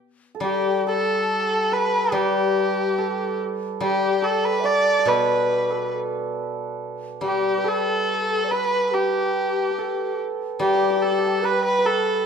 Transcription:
0.35 0.86 A4 soft
0.40 2.11 G3 medium
0.40 0.83 G4 medium
0.40 2.14 G4 medium
0.45 0.84 G4 medium
0.87 2.98 A4 medium
0.87 1.47 A4 medium
0.87 1.74 A4 medium
1.51 2.08 A4 medium
1.72 4.45 B4 medium
1.72 2.15 B4 medium
2.08 2.17 A4 soft
2.12 3.79 G3 medium
2.12 3.41 G4 medium
2.12 3.81 G4 medium
2.12 3.41 G4 medium
2.98 4.22 A4 medium
3.80 6.35 G3 medium
3.80 6.95 G4 medium
3.80 4.26 G4 medium
3.80 4.25 G4 medium
4.22 5.70 A4 medium
4.22 4.46 A4 medium
4.22 4.61 A4 medium
4.45 4.67 B4 medium
4.60 4.69 E5 medium
4.64 4.99 D5 medium
4.64 5.10 D5 medium
4.64 5.09 D5 medium
4.99 7.45 D5 medium
5.06 7.64 B2 medium
5.06 7.57 B4 medium
5.06 5.73 B4 medium
5.06 5.93 B4 medium
5.70 7.64 A4 medium
5.70 5.93 A4 medium
7.21 9.78 G3 soft
7.21 7.67 G4 medium
7.21 8.94 G4 medium
7.21 7.70 G4 medium
7.58 8.51 B4 medium
7.64 9.78 A4 medium
7.64 8.29 A4 medium
7.68 8.53 A4 medium
8.29 8.46 A4 medium
8.44 8.51 D5 medium
8.49 8.93 B4 medium
8.49 8.96 B4 medium
8.49 9.70 B4 medium
8.91 10.18 G4 medium
8.91 10.20 G4 medium
8.91 10.60 G4 medium
9.71 11.43 B4 soft
9.78 11.85 A4 medium
10.59 12.24 G3 medium
10.59 10.67 G4 medium
10.59 11.44 G4 medium
10.59 11.04 G4 medium
10.68 10.74 G4 soft
10.75 10.82 G4 soft
10.82 10.90 G4 soft
10.90 10.96 G4 soft
10.97 11.04 G4 soft
11.02 11.11 G4 soft
11.02 11.46 A4 medium
11.11 11.18 G4 soft
11.18 11.26 G4 medium
11.26 12.26 G4 soft
11.42 11.62 B4 medium
11.42 11.78 B4 medium
11.42 11.64 B4 medium
11.63 11.83 B4 medium
11.63 11.87 B4 medium
11.79 12.26 B4 soft
11.85 12.26 A4 medium
11.85 12.21 A4 medium
11.85 12.26 A4 medium
12.21 12.26 A4 soft

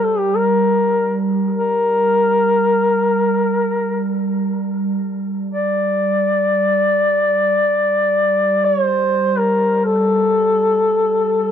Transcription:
0.00 7.37 G3 soft
0.00 0.20 A4 medium
0.18 0.38 G4 medium
0.37 1.22 A#4 medium
1.56 4.16 A#4 medium
5.52 8.66 D5 medium
7.38 11.52 G3 soft
8.65 8.84 C#5 medium
8.84 9.40 C5 medium
9.38 9.84 A#4 medium
9.85 11.52 A4 medium

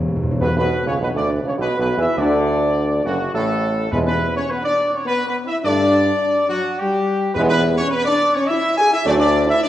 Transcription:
0.00 0.07 E2 loud
0.08 0.15 E2 loud
0.16 0.22 E2 loud
0.23 0.30 E2 loud
0.31 0.39 E2 loud
0.41 0.48 B1 loud
0.41 1.25 E2 loud
0.41 0.48 B2 loud
0.41 0.49 B3 loud
0.41 0.55 B4 loud
0.56 0.69 B1 medium
0.56 0.84 B2 loud
0.56 0.70 B3 medium
0.56 0.84 B4 loud
0.86 1.00 C#2 medium
0.86 1.00 C#3 medium
0.86 1.00 C#4 medium
0.86 0.93 C#5 medium
1.00 1.14 B1 medium
1.00 1.14 B2 medium
1.00 1.08 B3 loud
1.00 1.08 B4 medium
1.14 1.42 D2 loud
1.14 1.28 D3 medium
1.14 1.30 D4 medium
1.14 1.29 D5 loud
1.44 1.51 C#2 medium
1.44 1.58 C#3 medium
1.44 1.59 C#4 medium
1.44 1.53 C#5 medium
1.58 1.67 B1 medium
1.58 1.76 B2 loud
1.58 1.78 B3 loud
1.58 1.78 B4 loud
1.78 1.97 B1 medium
1.78 1.96 B2 medium
1.78 1.97 B3 medium
1.78 1.97 B4 medium
1.97 2.06 E2 loud
1.97 2.16 E3 loud
1.97 2.17 E4 loud
1.97 2.18 E5 loud
2.17 3.00 D2 loud
2.17 3.01 D3 loud
2.17 3.01 D4 loud
2.17 3.05 D5 loud
3.05 3.32 F#1 medium
3.05 3.18 F#2 medium
3.05 3.18 F#3 medium
3.05 3.32 F#4 loud
3.33 3.88 A1 medium
3.33 3.88 A2 loud
3.33 3.88 A3 medium
3.33 3.88 A4 loud
3.91 4.40 E2 medium
3.91 4.75 E2 loud
3.91 4.12 E3 medium
3.91 4.12 G#3 medium
3.91 3.99 B3 loud
3.91 3.98 B4 loud
4.06 4.19 B3 medium
4.06 4.33 B4 loud
4.36 4.49 C#4 medium
4.36 4.49 C#5 loud
4.49 4.64 B3 loud
4.49 4.64 B4 medium
4.63 4.90 D4 medium
4.63 4.91 D5 loud
4.93 4.99 C#4 medium
4.93 5.08 C#5 medium
5.05 5.24 B3 loud
5.05 5.25 B4 loud
5.27 5.44 B3 loud
5.27 5.36 B4 loud
5.46 5.65 E4 loud
5.46 5.56 E5 loud
5.63 6.12 G2 loud
5.63 5.85 D3 medium
5.63 5.85 A3 medium
5.63 6.45 D4 loud
5.63 6.46 D5 loud
6.48 6.61 F#3 loud
6.48 6.76 F#4 loud
6.79 7.32 G3 medium
6.79 7.35 G4 loud
7.34 7.82 E2 loud
7.34 8.16 E2 loud
7.34 7.55 E3 loud
7.34 7.55 G#3 loud
7.34 7.49 B3 loud
7.34 7.41 B4 loud
7.49 7.76 B3 loud
7.49 7.61 B4 loud
7.77 7.91 C#4 loud
7.77 7.90 C#5 loud
7.90 8.04 B4 loud
7.94 8.07 B3 loud
8.05 8.33 D4 loud
8.05 8.32 D5 loud
8.34 8.48 C#4 loud
8.34 8.49 C#5 loud
8.47 8.76 E4 loud
8.47 8.76 E5 loud
8.77 8.91 G#4 loud
8.77 8.90 G#5 loud
8.91 8.98 E4 loud
8.91 9.05 E5 loud
9.05 9.53 D2 loud
9.05 9.25 F#3 loud
9.05 9.25 A3 loud
9.05 9.11 D4 loud
9.05 9.12 D5 loud
9.17 9.45 D4 loud
9.17 9.46 D5 loud
9.47 9.61 E4 loud
9.47 9.63 E5 loud
9.63 9.69 D4 loud
9.63 9.69 D5 loud

